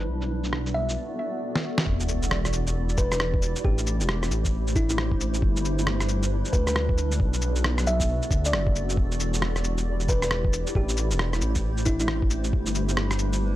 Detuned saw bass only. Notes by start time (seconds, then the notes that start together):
0.09 B1
1.86 E1
2.98 E1
3.65 A1
4.00 E1
4.31 A1
5.42 G1
6.53 D2
7.20 B1
8.31 D2
8.53 F#1
8.97 E1
10.08 E1
10.75 A1
11.11 E1
11.42 A1
12.53 G1